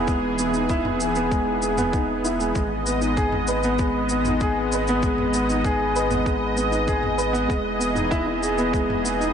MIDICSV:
0, 0, Header, 1, 5, 480
1, 0, Start_track
1, 0, Key_signature, 5, "minor"
1, 0, Tempo, 618557
1, 61, Time_signature, 4, 2, 24, 8
1, 7241, End_track
2, 0, Start_track
2, 0, Title_t, "Upright piano"
2, 0, Program_c, 0, 0
2, 0, Control_c, 0, 64, 127
2, 0, Note_on_c, 0, 56, 89
2, 0, Note_on_c, 0, 59, 108
2, 0, Note_on_c, 0, 63, 76
2, 0, Note_on_c, 0, 64, 68
2, 0, Note_on_c, 0, 68, 79
2, 63, Note_off_c, 0, 56, 0
2, 63, Note_on_c, 0, 56, 92
2, 176, Note_off_c, 0, 56, 0
2, 300, Note_off_c, 0, 59, 0
2, 300, Note_on_c, 0, 59, 75
2, 414, Note_off_c, 0, 59, 0
2, 419, Note_off_c, 0, 63, 0
2, 419, Note_on_c, 0, 63, 78
2, 489, Note_off_c, 0, 63, 0
2, 543, Note_off_c, 0, 64, 0
2, 543, Note_on_c, 0, 64, 103
2, 649, Note_off_c, 0, 64, 0
2, 661, Note_on_c, 0, 64, 73
2, 775, Note_off_c, 0, 64, 0
2, 781, Note_off_c, 0, 68, 0
2, 781, Note_on_c, 0, 68, 77
2, 895, Note_off_c, 0, 68, 0
2, 902, Note_on_c, 0, 59, 94
2, 1016, Note_off_c, 0, 59, 0
2, 1022, Note_on_c, 0, 56, 86
2, 1136, Note_off_c, 0, 56, 0
2, 1259, Note_on_c, 0, 68, 74
2, 1374, Note_off_c, 0, 68, 0
2, 1380, Note_on_c, 0, 59, 105
2, 1495, Note_off_c, 0, 59, 0
2, 1509, Note_on_c, 0, 63, 86
2, 1619, Note_off_c, 0, 63, 0
2, 1741, Note_on_c, 0, 64, 75
2, 1855, Note_off_c, 0, 64, 0
2, 1860, Note_on_c, 0, 56, 75
2, 1968, Note_off_c, 0, 56, 0
2, 1980, Note_on_c, 0, 56, 91
2, 1992, Control_c, 0, 64, 0
2, 2095, Note_off_c, 0, 56, 0
2, 2123, Control_c, 0, 64, 127
2, 2227, Note_on_c, 0, 59, 80
2, 2338, Note_off_c, 0, 59, 0
2, 2338, Note_on_c, 0, 63, 71
2, 2408, Note_off_c, 0, 63, 0
2, 2456, Note_on_c, 0, 68, 104
2, 2572, Note_off_c, 0, 68, 0
2, 2584, Note_on_c, 0, 68, 76
2, 2697, Note_off_c, 0, 68, 0
2, 2702, Note_on_c, 0, 71, 79
2, 2816, Note_off_c, 0, 71, 0
2, 2827, Note_on_c, 0, 59, 99
2, 2938, Note_off_c, 0, 59, 0
2, 2949, Note_on_c, 0, 56, 85
2, 3059, Note_off_c, 0, 56, 0
2, 3187, Note_on_c, 0, 59, 77
2, 3298, Note_off_c, 0, 59, 0
2, 3314, Note_on_c, 0, 63, 72
2, 3376, Note_off_c, 0, 63, 0
2, 3431, Note_on_c, 0, 68, 105
2, 3540, Note_off_c, 0, 68, 0
2, 3552, Note_on_c, 0, 68, 65
2, 3661, Note_off_c, 0, 68, 0
2, 3674, Note_on_c, 0, 71, 81
2, 3782, Note_off_c, 0, 71, 0
2, 3793, Note_on_c, 0, 59, 110
2, 3901, Note_off_c, 0, 59, 0
2, 3908, Note_on_c, 0, 56, 93
2, 4018, Note_off_c, 0, 56, 0
2, 4147, Note_on_c, 0, 59, 77
2, 4258, Note_off_c, 0, 59, 0
2, 4266, Note_on_c, 0, 63, 75
2, 4332, Note_off_c, 0, 63, 0
2, 4381, Note_on_c, 0, 68, 106
2, 4494, Note_off_c, 0, 68, 0
2, 4505, Note_on_c, 0, 68, 77
2, 4617, Note_off_c, 0, 68, 0
2, 4623, Note_on_c, 0, 71, 78
2, 4734, Note_on_c, 0, 59, 93
2, 4736, Note_off_c, 0, 71, 0
2, 4851, Note_off_c, 0, 59, 0
2, 4856, Note_on_c, 0, 56, 91
2, 4973, Note_off_c, 0, 56, 0
2, 5095, Note_on_c, 0, 59, 78
2, 5210, Note_on_c, 0, 63, 71
2, 5212, Note_off_c, 0, 59, 0
2, 5284, Note_off_c, 0, 63, 0
2, 5335, Note_on_c, 0, 68, 106
2, 5442, Note_off_c, 0, 68, 0
2, 5454, Note_on_c, 0, 68, 73
2, 5571, Note_off_c, 0, 68, 0
2, 5571, Note_on_c, 0, 71, 81
2, 5688, Note_on_c, 0, 59, 108
2, 5690, Note_off_c, 0, 71, 0
2, 5803, Note_on_c, 0, 56, 90
2, 5809, Note_off_c, 0, 59, 0
2, 5831, Control_c, 0, 64, 0
2, 5926, Note_off_c, 0, 56, 0
2, 5948, Control_c, 0, 64, 127
2, 6046, Note_on_c, 0, 59, 77
2, 6168, Note_off_c, 0, 59, 0
2, 6169, Note_on_c, 0, 63, 73
2, 6243, Note_off_c, 0, 63, 0
2, 6293, Note_on_c, 0, 64, 112
2, 6402, Note_off_c, 0, 64, 0
2, 6413, Note_on_c, 0, 64, 81
2, 6531, Note_off_c, 0, 64, 0
2, 6539, Note_on_c, 0, 68, 81
2, 6654, Note_off_c, 0, 68, 0
2, 6658, Note_on_c, 0, 59, 98
2, 6774, Note_off_c, 0, 59, 0
2, 6776, Note_on_c, 0, 56, 89
2, 6893, Note_off_c, 0, 56, 0
2, 7019, Note_on_c, 0, 59, 74
2, 7134, Note_off_c, 0, 59, 0
2, 7142, Note_on_c, 0, 63, 82
2, 7210, Note_off_c, 0, 63, 0
2, 7241, End_track
3, 0, Start_track
3, 0, Title_t, "Analog synth pad"
3, 0, Program_c, 1, 89
3, 0, Note_on_c, 1, 52, 81
3, 0, Note_on_c, 1, 59, 75
3, 0, Note_on_c, 1, 68, 83
3, 1947, Note_off_c, 1, 52, 0
3, 1949, Note_off_c, 1, 68, 0
3, 1979, Note_on_c, 1, 56, 79
3, 1981, Note_on_c, 1, 75, 92
3, 5789, Note_off_c, 1, 56, 0
3, 5814, Note_on_c, 1, 52, 82
3, 5817, Note_on_c, 1, 68, 84
3, 7241, Note_off_c, 1, 52, 0
3, 7241, Note_off_c, 1, 59, 0
3, 7241, Note_off_c, 1, 68, 0
3, 7241, Note_off_c, 1, 75, 0
3, 7241, End_track
4, 0, Start_track
4, 0, Title_t, "Sub bass"
4, 0, Program_c, 2, 38
4, 0, Note_on_c, 2, 28, 96
4, 1956, Note_off_c, 2, 28, 0
4, 1980, Note_on_c, 2, 32, 90
4, 5797, Note_off_c, 2, 32, 0
4, 5815, Note_on_c, 2, 28, 91
4, 7241, Note_off_c, 2, 28, 0
4, 7241, End_track
5, 0, Start_track
5, 0, Title_t, "Drums"
5, 59, Note_on_c, 9, 36, 106
5, 59, Note_on_c, 9, 82, 33
5, 136, Note_off_c, 9, 82, 0
5, 137, Note_off_c, 9, 36, 0
5, 299, Note_on_c, 9, 82, 81
5, 376, Note_off_c, 9, 82, 0
5, 418, Note_on_c, 9, 82, 45
5, 495, Note_off_c, 9, 82, 0
5, 537, Note_on_c, 9, 82, 35
5, 539, Note_on_c, 9, 36, 102
5, 615, Note_off_c, 9, 82, 0
5, 617, Note_off_c, 9, 36, 0
5, 659, Note_on_c, 9, 45, 71
5, 737, Note_off_c, 9, 45, 0
5, 778, Note_on_c, 9, 82, 77
5, 855, Note_off_c, 9, 82, 0
5, 895, Note_on_c, 9, 82, 45
5, 973, Note_off_c, 9, 82, 0
5, 1020, Note_on_c, 9, 36, 110
5, 1022, Note_on_c, 9, 82, 31
5, 1098, Note_off_c, 9, 36, 0
5, 1100, Note_off_c, 9, 82, 0
5, 1259, Note_on_c, 9, 82, 72
5, 1336, Note_off_c, 9, 82, 0
5, 1380, Note_on_c, 9, 45, 64
5, 1380, Note_on_c, 9, 82, 44
5, 1457, Note_off_c, 9, 45, 0
5, 1457, Note_off_c, 9, 82, 0
5, 1500, Note_on_c, 9, 36, 116
5, 1500, Note_on_c, 9, 82, 33
5, 1577, Note_off_c, 9, 36, 0
5, 1578, Note_off_c, 9, 82, 0
5, 1744, Note_on_c, 9, 82, 76
5, 1821, Note_off_c, 9, 82, 0
5, 1864, Note_on_c, 9, 82, 45
5, 1942, Note_off_c, 9, 82, 0
5, 1981, Note_on_c, 9, 36, 98
5, 1981, Note_on_c, 9, 82, 32
5, 2058, Note_off_c, 9, 82, 0
5, 2059, Note_off_c, 9, 36, 0
5, 2222, Note_on_c, 9, 82, 79
5, 2299, Note_off_c, 9, 82, 0
5, 2340, Note_on_c, 9, 82, 43
5, 2418, Note_off_c, 9, 82, 0
5, 2462, Note_on_c, 9, 36, 105
5, 2462, Note_on_c, 9, 82, 35
5, 2539, Note_off_c, 9, 36, 0
5, 2539, Note_off_c, 9, 82, 0
5, 2579, Note_on_c, 9, 45, 66
5, 2656, Note_off_c, 9, 45, 0
5, 2695, Note_on_c, 9, 82, 70
5, 2772, Note_off_c, 9, 82, 0
5, 2818, Note_on_c, 9, 82, 42
5, 2895, Note_off_c, 9, 82, 0
5, 2937, Note_on_c, 9, 82, 31
5, 2942, Note_on_c, 9, 36, 104
5, 3015, Note_off_c, 9, 82, 0
5, 3019, Note_off_c, 9, 36, 0
5, 3175, Note_on_c, 9, 82, 75
5, 3253, Note_off_c, 9, 82, 0
5, 3298, Note_on_c, 9, 45, 61
5, 3298, Note_on_c, 9, 82, 43
5, 3376, Note_off_c, 9, 45, 0
5, 3376, Note_off_c, 9, 82, 0
5, 3418, Note_on_c, 9, 82, 31
5, 3422, Note_on_c, 9, 36, 108
5, 3495, Note_off_c, 9, 82, 0
5, 3499, Note_off_c, 9, 36, 0
5, 3663, Note_on_c, 9, 82, 75
5, 3741, Note_off_c, 9, 82, 0
5, 3782, Note_on_c, 9, 82, 44
5, 3860, Note_off_c, 9, 82, 0
5, 3899, Note_on_c, 9, 82, 31
5, 3901, Note_on_c, 9, 36, 102
5, 3977, Note_off_c, 9, 82, 0
5, 3979, Note_off_c, 9, 36, 0
5, 4020, Note_on_c, 9, 45, 62
5, 4098, Note_off_c, 9, 45, 0
5, 4140, Note_on_c, 9, 82, 78
5, 4218, Note_off_c, 9, 82, 0
5, 4265, Note_on_c, 9, 82, 40
5, 4342, Note_off_c, 9, 82, 0
5, 4381, Note_on_c, 9, 36, 99
5, 4384, Note_on_c, 9, 82, 32
5, 4458, Note_off_c, 9, 36, 0
5, 4462, Note_off_c, 9, 82, 0
5, 4624, Note_on_c, 9, 82, 68
5, 4701, Note_off_c, 9, 82, 0
5, 4739, Note_on_c, 9, 45, 65
5, 4739, Note_on_c, 9, 82, 43
5, 4816, Note_off_c, 9, 45, 0
5, 4816, Note_off_c, 9, 82, 0
5, 4859, Note_on_c, 9, 36, 100
5, 4860, Note_on_c, 9, 82, 28
5, 4936, Note_off_c, 9, 36, 0
5, 4938, Note_off_c, 9, 82, 0
5, 5099, Note_on_c, 9, 82, 67
5, 5177, Note_off_c, 9, 82, 0
5, 5218, Note_on_c, 9, 82, 40
5, 5295, Note_off_c, 9, 82, 0
5, 5337, Note_on_c, 9, 82, 32
5, 5338, Note_on_c, 9, 36, 100
5, 5414, Note_off_c, 9, 82, 0
5, 5415, Note_off_c, 9, 36, 0
5, 5455, Note_on_c, 9, 45, 64
5, 5532, Note_off_c, 9, 45, 0
5, 5576, Note_on_c, 9, 82, 70
5, 5654, Note_off_c, 9, 82, 0
5, 5700, Note_on_c, 9, 82, 44
5, 5778, Note_off_c, 9, 82, 0
5, 5818, Note_on_c, 9, 36, 94
5, 5822, Note_on_c, 9, 82, 30
5, 5895, Note_off_c, 9, 36, 0
5, 5899, Note_off_c, 9, 82, 0
5, 6059, Note_on_c, 9, 82, 77
5, 6137, Note_off_c, 9, 82, 0
5, 6178, Note_on_c, 9, 45, 66
5, 6178, Note_on_c, 9, 82, 41
5, 6255, Note_off_c, 9, 45, 0
5, 6255, Note_off_c, 9, 82, 0
5, 6298, Note_on_c, 9, 36, 96
5, 6300, Note_on_c, 9, 82, 32
5, 6375, Note_off_c, 9, 36, 0
5, 6378, Note_off_c, 9, 82, 0
5, 6542, Note_on_c, 9, 82, 71
5, 6619, Note_off_c, 9, 82, 0
5, 6659, Note_on_c, 9, 82, 37
5, 6736, Note_off_c, 9, 82, 0
5, 6777, Note_on_c, 9, 36, 100
5, 6785, Note_on_c, 9, 82, 30
5, 6855, Note_off_c, 9, 36, 0
5, 6863, Note_off_c, 9, 82, 0
5, 6906, Note_on_c, 9, 45, 66
5, 6983, Note_off_c, 9, 45, 0
5, 7025, Note_on_c, 9, 82, 73
5, 7103, Note_off_c, 9, 82, 0
5, 7149, Note_on_c, 9, 82, 42
5, 7227, Note_off_c, 9, 82, 0
5, 7241, End_track
0, 0, End_of_file